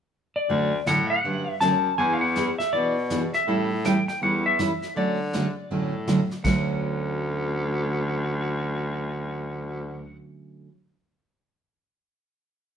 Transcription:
0.36 0.87 D5 medium
0.49 0.79 D2 medium
0.49 0.71 D3 medium
0.49 0.71 F#3 medium
0.49 0.72 A3 medium
0.49 0.72 C#4 medium
0.49 0.72 F#4 medium
0.49 brush sweep soft
0.86 1.18 A2 medium
0.86 0.98 D3 medium
0.86 0.98 F#3 medium
0.86 0.99 A3 medium
0.86 0.99 C#4 medium
0.86 0.99 F#4 medium
0.86 1.09 F#5 medium
0.86 snare medium
0.86 hi-hat pedal medium
1.10 1.60 F#5 medium
1.23 1.56 G2 medium
1.23 1.46 D3 soft
1.23 1.46 F#3 soft
1.23 1.46 A3 medium
1.23 1.46 C#4 medium
1.23 1.46 F#4 medium
1.23 brush sweep soft
1.61 1.93 F#2 medium
1.61 1.73 D3 medium
1.61 1.73 F#3 medium
1.61 1.73 A3 medium
1.61 1.73 C#4 medium
1.61 1.73 F#4 medium
1.61 1.98 A5 medium
1.61 snare medium
1.61 hi-hat pedal medium
1.98 2.58 E2 medium
1.98 2.20 E3 medium
1.98 2.20 B3 medium
1.98 2.20 D4 medium
1.98 2.21 G#4 medium
1.98 2.13 G#5 medium
1.98 brush sweep soft
2.13 2.21 F5 medium
2.21 2.58 F#5 medium
2.35 2.47 E3 medium
2.35 2.47 B3 medium
2.35 2.48 D4 medium
2.35 2.48 G#4 medium
2.35 snare medium
2.35 hi-hat pedal soft
2.58 2.73 E5 medium
2.58 snare soft
2.73 3.33 B2 medium
2.73 2.95 E3 medium
2.73 2.95 B3 medium
2.73 2.95 D4 medium
2.73 2.95 G#4 medium
2.73 3.34 D5 medium
2.73 brush sweep soft
3.10 3.22 E3 medium
3.10 3.22 B3 medium
3.10 3.22 D4 medium
3.10 3.22 G#4 medium
3.10 snare medium
3.10 hi-hat pedal medium
3.34 3.86 E5 medium
3.34 snare soft
3.47 4.07 A2 medium
3.47 3.69 E3 medium
3.47 3.69 G3 medium
3.47 3.69 C#4 medium
3.47 3.70 E4 medium
3.47 3.70 A4 medium
3.47 brush sweep soft
3.85 3.96 E3 medium
3.85 3.97 G3 medium
3.85 3.97 C#4 medium
3.85 3.97 E4 medium
3.85 3.97 A4 medium
3.85 4.07 G5 medium
3.85 snare medium
3.85 hi-hat pedal medium
4.08 4.21 G5 medium
4.08 snare soft
4.22 4.62 E2 medium
4.22 4.44 E3 medium
4.22 4.44 G3 medium
4.22 4.44 C#4 medium
4.22 4.44 E4 medium
4.22 4.44 A4 medium
4.22 4.47 F#5 medium
4.22 brush sweep soft
4.46 4.97 E5 medium
4.59 4.71 E3 medium
4.59 4.71 G3 medium
4.59 4.71 C#4 medium
4.59 4.71 E4 medium
4.59 4.71 A4 medium
4.59 snare medium
4.59 hi-hat pedal medium
4.82 snare soft
4.96 5.56 D3 medium
4.96 5.18 D3 medium
4.96 5.18 F#3 medium
4.96 5.18 A3 medium
4.96 5.18 C#4 medium
4.96 5.19 F#4 medium
4.96 6.04 D5 medium
4.96 brush sweep medium
5.33 5.45 D3 medium
5.33 5.45 F#3 medium
5.33 5.45 A3 medium
5.33 5.45 C#4 medium
5.33 5.46 F#4 medium
5.33 snare medium
5.33 hi-hat pedal medium
5.70 6.30 A2 medium
5.70 5.92 D3 medium
5.70 5.92 F#3 medium
5.70 5.93 A3 medium
5.70 5.93 C#4 medium
5.70 5.93 F#4 medium
5.70 brush sweep soft
6.07 6.19 D3 medium
6.07 6.19 F#3 medium
6.07 6.19 A3 medium
6.07 6.20 C#4 medium
6.07 6.20 F#4 medium
6.07 snare medium
6.07 hi-hat pedal medium
6.31 snare soft
6.44 10.17 D2 medium
6.44 10.68 D3 medium
6.44 10.69 F#3 medium
6.44 10.69 A3 medium
6.44 10.70 C#4 medium
6.44 10.71 F#4 medium
6.44 10.17 F#5 medium
6.44 kick loud
6.44 snare medium
6.44 china medium

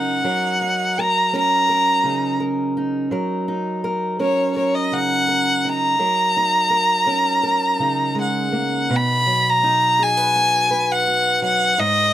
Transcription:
0.00 0.26 C#3 soft
0.00 0.24 F#3 medium
0.00 0.64 C#4 medium
0.00 0.61 D#4 soft
0.00 0.25 A#4 medium
0.00 1.02 F#5 medium
0.24 3.11 F#3 medium
0.24 0.98 A#4 soft
0.61 2.04 D#4 soft
0.98 1.33 A#4 soft
0.98 1.35 A#5 medium
1.33 3.51 C#4 soft
1.33 1.69 A#4 soft
1.38 2.38 A#5 medium
1.69 2.40 A#4 medium
2.04 3.11 C#3 soft
2.04 2.77 D#4 soft
2.40 3.12 A#4 medium
2.77 3.48 D#4 soft
3.11 5.99 F#3 medium
3.11 3.84 A#4 medium
3.48 4.92 D#4 soft
3.84 4.19 A#4 medium
4.19 5.94 C#4 medium
4.19 4.56 A#4 medium
4.19 4.54 C#5 medium
4.56 5.28 A#4 medium
4.56 4.77 C#5 medium
4.75 4.96 D#5 medium
4.92 5.99 C#3 soft
4.92 5.64 D#4 soft
4.92 5.71 F#5 medium
5.28 5.99 A#4 medium
5.65 6.35 D#4 soft
5.69 8.20 A#5 medium
5.99 8.14 F#3 medium
5.99 6.69 A#4 soft
6.37 7.79 D#4 soft
6.70 7.06 A#4 medium
7.06 8.85 C#4 soft
7.06 7.42 A#4 medium
7.43 8.86 A#4 soft
7.79 8.90 C#3 soft
7.79 9.62 D#4 soft
8.15 8.52 G#3 soft
8.22 8.97 F#5 medium
8.52 8.89 A#3 soft
8.90 11.74 B2 medium
8.96 9.52 B5 medium
9.26 11.41 F#3 medium
9.50 10.05 A#5 medium
9.63 11.74 D#4 medium
9.99 10.17 G#4 medium
10.04 10.94 G#5 medium
10.17 10.69 B4 soft
10.36 11.06 F#4 medium
10.71 11.74 B4 medium
10.92 11.44 F#5 medium
11.07 11.74 F#4 soft
11.42 11.78 F#3 medium
11.42 11.82 F#5 medium
11.78 12.13 G#2 medium
11.78 12.13 D#5 loud

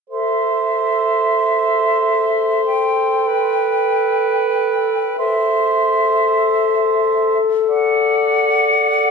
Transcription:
0.10 5.13 A4 soft
0.10 3.30 C5 soft
0.10 2.62 E5 soft
2.66 5.14 G5 soft
3.28 5.17 B4 soft
5.17 9.11 A4 medium
5.17 7.38 C5 medium
5.17 7.37 E5 soft
7.68 9.11 D5 soft
7.68 9.11 F#5 soft

